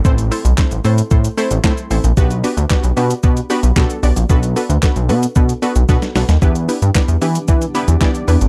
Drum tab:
HH |-xox-xox-xox-xox|-xox-xox-xox-xox|-xox-xox-xox-xox|-xox-xox-xox-xox|
SH |xxxxxxxxxxxxxxxx|xxxxxxxxxxxxxxxx|xxxxxxxxxxxxxxxx|xxxxxxxxxxxxxxxx|
CP |----x-------x---|----x-------x---|----x-----------|----x-------x---|
SD |----o-------o---|----o-------o---|----o-------oooo|----o-------o---|
BD |o---o---o---o---|o---o---o---o---|o---o---o---o---|o---o---o---o---|